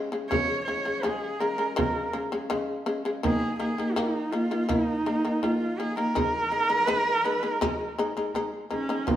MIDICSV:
0, 0, Header, 1, 4, 480
1, 0, Start_track
1, 0, Tempo, 729040
1, 207, Time_signature, 4, 2, 24, 8
1, 6034, End_track
2, 0, Start_track
2, 0, Title_t, "Horsehead fiddle"
2, 0, Program_c, 0, 110
2, 196, Note_on_c, 0, 73, 108
2, 421, Note_off_c, 0, 73, 0
2, 425, Note_on_c, 0, 73, 93
2, 694, Note_on_c, 0, 68, 90
2, 704, Note_off_c, 0, 73, 0
2, 921, Note_on_c, 0, 70, 91
2, 931, Note_off_c, 0, 68, 0
2, 1166, Note_off_c, 0, 70, 0
2, 1176, Note_on_c, 0, 70, 77
2, 1396, Note_off_c, 0, 70, 0
2, 2136, Note_on_c, 0, 68, 96
2, 2357, Note_off_c, 0, 68, 0
2, 2365, Note_on_c, 0, 68, 79
2, 2602, Note_on_c, 0, 63, 80
2, 2612, Note_off_c, 0, 68, 0
2, 2843, Note_on_c, 0, 65, 89
2, 2853, Note_off_c, 0, 63, 0
2, 3085, Note_on_c, 0, 63, 101
2, 3095, Note_off_c, 0, 65, 0
2, 3580, Note_on_c, 0, 65, 90
2, 3589, Note_off_c, 0, 63, 0
2, 3813, Note_on_c, 0, 68, 97
2, 3823, Note_off_c, 0, 65, 0
2, 3933, Note_off_c, 0, 68, 0
2, 3945, Note_on_c, 0, 70, 125
2, 4484, Note_off_c, 0, 70, 0
2, 4484, Note_on_c, 0, 71, 125
2, 4629, Note_off_c, 0, 71, 0
2, 4629, Note_on_c, 0, 70, 125
2, 4787, Note_off_c, 0, 70, 0
2, 4787, Note_on_c, 0, 71, 125
2, 4939, Note_off_c, 0, 71, 0
2, 4939, Note_on_c, 0, 70, 125
2, 5470, Note_off_c, 0, 70, 0
2, 5738, Note_on_c, 0, 61, 89
2, 5981, Note_on_c, 0, 63, 88
2, 5991, Note_off_c, 0, 61, 0
2, 6034, Note_off_c, 0, 63, 0
2, 6034, End_track
3, 0, Start_track
3, 0, Title_t, "Shamisen"
3, 0, Program_c, 1, 106
3, 79, Note_on_c, 1, 49, 74
3, 85, Note_on_c, 1, 56, 74
3, 179, Note_off_c, 1, 49, 0
3, 182, Note_off_c, 1, 56, 0
3, 203, Note_on_c, 1, 49, 89
3, 208, Note_on_c, 1, 56, 97
3, 398, Note_off_c, 1, 49, 0
3, 400, Note_off_c, 1, 56, 0
3, 447, Note_on_c, 1, 49, 63
3, 451, Note_on_c, 1, 56, 74
3, 544, Note_off_c, 1, 49, 0
3, 546, Note_off_c, 1, 56, 0
3, 562, Note_on_c, 1, 49, 62
3, 566, Note_on_c, 1, 56, 62
3, 662, Note_off_c, 1, 49, 0
3, 663, Note_off_c, 1, 56, 0
3, 680, Note_on_c, 1, 49, 85
3, 686, Note_on_c, 1, 56, 97
3, 877, Note_off_c, 1, 49, 0
3, 880, Note_off_c, 1, 56, 0
3, 925, Note_on_c, 1, 49, 63
3, 929, Note_on_c, 1, 56, 75
3, 1023, Note_off_c, 1, 49, 0
3, 1025, Note_off_c, 1, 56, 0
3, 1041, Note_on_c, 1, 49, 69
3, 1046, Note_on_c, 1, 56, 75
3, 1141, Note_off_c, 1, 49, 0
3, 1144, Note_off_c, 1, 56, 0
3, 1160, Note_on_c, 1, 49, 100
3, 1164, Note_on_c, 1, 56, 113
3, 1357, Note_off_c, 1, 49, 0
3, 1359, Note_off_c, 1, 56, 0
3, 1405, Note_on_c, 1, 49, 78
3, 1409, Note_on_c, 1, 56, 80
3, 1504, Note_off_c, 1, 49, 0
3, 1506, Note_off_c, 1, 56, 0
3, 1528, Note_on_c, 1, 49, 81
3, 1531, Note_on_c, 1, 56, 78
3, 1626, Note_off_c, 1, 49, 0
3, 1626, Note_off_c, 1, 56, 0
3, 1645, Note_on_c, 1, 49, 108
3, 1649, Note_on_c, 1, 56, 111
3, 1840, Note_off_c, 1, 49, 0
3, 1842, Note_off_c, 1, 56, 0
3, 1884, Note_on_c, 1, 49, 84
3, 1887, Note_on_c, 1, 56, 87
3, 1984, Note_off_c, 1, 49, 0
3, 1985, Note_off_c, 1, 56, 0
3, 2009, Note_on_c, 1, 49, 76
3, 2014, Note_on_c, 1, 56, 79
3, 2106, Note_off_c, 1, 49, 0
3, 2109, Note_off_c, 1, 56, 0
3, 2129, Note_on_c, 1, 51, 92
3, 2134, Note_on_c, 1, 58, 96
3, 2322, Note_off_c, 1, 51, 0
3, 2325, Note_off_c, 1, 58, 0
3, 2367, Note_on_c, 1, 51, 64
3, 2370, Note_on_c, 1, 58, 77
3, 2466, Note_off_c, 1, 51, 0
3, 2467, Note_off_c, 1, 58, 0
3, 2491, Note_on_c, 1, 51, 66
3, 2499, Note_on_c, 1, 58, 73
3, 2588, Note_off_c, 1, 51, 0
3, 2592, Note_off_c, 1, 58, 0
3, 2609, Note_on_c, 1, 51, 102
3, 2616, Note_on_c, 1, 58, 105
3, 2803, Note_off_c, 1, 51, 0
3, 2806, Note_off_c, 1, 58, 0
3, 2847, Note_on_c, 1, 51, 72
3, 2853, Note_on_c, 1, 58, 77
3, 2946, Note_off_c, 1, 51, 0
3, 2949, Note_off_c, 1, 58, 0
3, 2970, Note_on_c, 1, 51, 67
3, 2973, Note_on_c, 1, 58, 75
3, 3067, Note_off_c, 1, 51, 0
3, 3069, Note_off_c, 1, 58, 0
3, 3086, Note_on_c, 1, 51, 93
3, 3090, Note_on_c, 1, 58, 111
3, 3281, Note_off_c, 1, 51, 0
3, 3283, Note_off_c, 1, 58, 0
3, 3334, Note_on_c, 1, 51, 72
3, 3337, Note_on_c, 1, 58, 79
3, 3429, Note_off_c, 1, 51, 0
3, 3431, Note_off_c, 1, 58, 0
3, 3454, Note_on_c, 1, 51, 68
3, 3458, Note_on_c, 1, 58, 69
3, 3549, Note_off_c, 1, 51, 0
3, 3551, Note_off_c, 1, 58, 0
3, 3574, Note_on_c, 1, 51, 85
3, 3580, Note_on_c, 1, 58, 78
3, 3766, Note_off_c, 1, 51, 0
3, 3767, Note_off_c, 1, 58, 0
3, 3817, Note_on_c, 1, 51, 68
3, 3822, Note_on_c, 1, 58, 61
3, 3911, Note_off_c, 1, 51, 0
3, 3912, Note_off_c, 1, 58, 0
3, 3931, Note_on_c, 1, 51, 66
3, 3937, Note_on_c, 1, 58, 74
3, 4028, Note_off_c, 1, 51, 0
3, 4031, Note_off_c, 1, 58, 0
3, 4051, Note_on_c, 1, 56, 87
3, 4055, Note_on_c, 1, 63, 105
3, 4244, Note_off_c, 1, 56, 0
3, 4246, Note_off_c, 1, 63, 0
3, 4289, Note_on_c, 1, 56, 65
3, 4293, Note_on_c, 1, 63, 70
3, 4387, Note_off_c, 1, 56, 0
3, 4388, Note_off_c, 1, 63, 0
3, 4406, Note_on_c, 1, 56, 62
3, 4410, Note_on_c, 1, 63, 83
3, 4505, Note_off_c, 1, 56, 0
3, 4507, Note_off_c, 1, 63, 0
3, 4526, Note_on_c, 1, 56, 115
3, 4532, Note_on_c, 1, 63, 123
3, 4721, Note_off_c, 1, 56, 0
3, 4724, Note_off_c, 1, 63, 0
3, 4770, Note_on_c, 1, 56, 77
3, 4776, Note_on_c, 1, 63, 87
3, 4866, Note_off_c, 1, 56, 0
3, 4869, Note_off_c, 1, 63, 0
3, 4890, Note_on_c, 1, 56, 80
3, 4896, Note_on_c, 1, 63, 71
3, 4987, Note_off_c, 1, 56, 0
3, 4989, Note_off_c, 1, 63, 0
3, 5012, Note_on_c, 1, 56, 115
3, 5017, Note_on_c, 1, 63, 121
3, 5203, Note_off_c, 1, 56, 0
3, 5206, Note_off_c, 1, 63, 0
3, 5257, Note_on_c, 1, 56, 83
3, 5262, Note_on_c, 1, 63, 95
3, 5350, Note_off_c, 1, 56, 0
3, 5352, Note_off_c, 1, 63, 0
3, 5377, Note_on_c, 1, 56, 73
3, 5382, Note_on_c, 1, 63, 84
3, 5470, Note_off_c, 1, 56, 0
3, 5472, Note_off_c, 1, 63, 0
3, 5498, Note_on_c, 1, 56, 91
3, 5503, Note_on_c, 1, 63, 106
3, 5686, Note_off_c, 1, 56, 0
3, 5687, Note_off_c, 1, 63, 0
3, 5731, Note_on_c, 1, 56, 79
3, 5734, Note_on_c, 1, 63, 69
3, 5826, Note_off_c, 1, 63, 0
3, 5827, Note_off_c, 1, 56, 0
3, 5854, Note_on_c, 1, 56, 82
3, 5860, Note_on_c, 1, 63, 90
3, 5947, Note_off_c, 1, 56, 0
3, 5950, Note_off_c, 1, 63, 0
3, 5971, Note_on_c, 1, 58, 87
3, 5976, Note_on_c, 1, 65, 90
3, 6034, Note_off_c, 1, 58, 0
3, 6034, Note_off_c, 1, 65, 0
3, 6034, End_track
4, 0, Start_track
4, 0, Title_t, "Frame drum"
4, 211, Note_on_c, 9, 64, 76
4, 277, Note_off_c, 9, 64, 0
4, 459, Note_on_c, 9, 64, 22
4, 525, Note_off_c, 9, 64, 0
4, 577, Note_on_c, 9, 64, 24
4, 643, Note_off_c, 9, 64, 0
4, 697, Note_on_c, 9, 64, 59
4, 763, Note_off_c, 9, 64, 0
4, 1176, Note_on_c, 9, 64, 77
4, 1242, Note_off_c, 9, 64, 0
4, 1542, Note_on_c, 9, 64, 24
4, 1608, Note_off_c, 9, 64, 0
4, 1658, Note_on_c, 9, 64, 58
4, 1724, Note_off_c, 9, 64, 0
4, 2137, Note_on_c, 9, 64, 80
4, 2203, Note_off_c, 9, 64, 0
4, 2376, Note_on_c, 9, 64, 25
4, 2442, Note_off_c, 9, 64, 0
4, 2493, Note_on_c, 9, 64, 26
4, 2559, Note_off_c, 9, 64, 0
4, 2608, Note_on_c, 9, 64, 53
4, 2674, Note_off_c, 9, 64, 0
4, 3093, Note_on_c, 9, 64, 71
4, 3159, Note_off_c, 9, 64, 0
4, 3460, Note_on_c, 9, 64, 24
4, 3526, Note_off_c, 9, 64, 0
4, 3574, Note_on_c, 9, 64, 55
4, 3640, Note_off_c, 9, 64, 0
4, 4060, Note_on_c, 9, 64, 73
4, 4126, Note_off_c, 9, 64, 0
4, 4301, Note_on_c, 9, 64, 24
4, 4367, Note_off_c, 9, 64, 0
4, 4420, Note_on_c, 9, 64, 24
4, 4486, Note_off_c, 9, 64, 0
4, 4544, Note_on_c, 9, 64, 60
4, 4610, Note_off_c, 9, 64, 0
4, 5017, Note_on_c, 9, 64, 73
4, 5083, Note_off_c, 9, 64, 0
4, 5379, Note_on_c, 9, 64, 22
4, 5445, Note_off_c, 9, 64, 0
4, 5494, Note_on_c, 9, 64, 57
4, 5559, Note_off_c, 9, 64, 0
4, 5740, Note_on_c, 9, 64, 53
4, 5806, Note_off_c, 9, 64, 0
4, 5975, Note_on_c, 9, 64, 85
4, 6034, Note_off_c, 9, 64, 0
4, 6034, End_track
0, 0, End_of_file